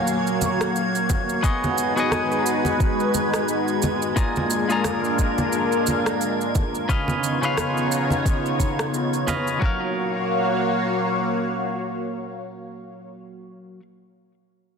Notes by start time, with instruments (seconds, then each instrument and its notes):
Already playing: clean electric guitar F#3 F#4 G#4 A#4 F5, analog synth pad A#3 F#4 C#5 F5, synth texture G#6
0.07 cabasa
0.27 cabasa
0.41 high conga, cabasa
0.61 cross-stick, cabasa
0.76 cabasa
0.95 cabasa
1.10 kick, high conga, cabasa
1.29 cabasa
1.43 analog synth pad G#3 D#4 B4, clean electric guitar B3 F#4 G#4 C#5 D#5, kick, cabasa
1.64 high conga, cabasa
1.78 cabasa
1.96 clean electric guitar B3 F#4 G#4 C#5 D#5, cabasa
2.11 cross-stick, high conga, cabasa
2.32 cabasa
2.46 cabasa
2.65 high conga, cabasa
2.80 kick, cabasa
3.00 cabasa
3.14 high conga, cabasa
3.34 cross-stick, cabasa
3.48 cabasa
3.68 cabasa
3.82 high conga, cabasa
4.02 cabasa
4.16 clean electric guitar A#3 F4 G#4 D5 A#5, analog synth pad D4 F4 A#4, kick, cabasa
4.36 high conga, cabasa
4.50 cabasa
4.69 clean electric guitar A#3 F4 G#4 D5 A#5, cabasa
4.84 cross-stick, high conga, cabasa
5.04 cabasa
5.19 kick, cabasa
5.38 high conga, cabasa
5.52 cabasa
5.72 cabasa
5.87 high conga, cabasa
6.06 cross-stick, cabasa
6.21 cabasa
6.41 cabasa
6.55 kick, high conga, cabasa
6.75 cabasa
6.89 clean electric guitar C#3 C#4 B4 D#5 F5, analog synth pad B3 D#4 F4 C#5, kick, cabasa
7.08 high conga, cabasa
7.24 cabasa
7.41 clean electric guitar C#3 C#4 B4 F5, cabasa
7.57 cross-stick, high conga, cabasa
7.77 cabasa
7.92 cabasa
8.10 high conga, cabasa
8.26 kick, cabasa
8.46 cabasa
8.60 kick, high conga, cabasa
8.79 cross-stick, cabasa
8.94 cabasa
9.13 cabasa
9.27 clean electric guitar C#3 C#4 B4 D#5 F5, high conga, cabasa
9.47 cabasa
9.59 clean electric guitar F#3 F#4, analog synth pad A#3 F#4 C#5 F5, kick
9.64 clean electric guitar A#4 F5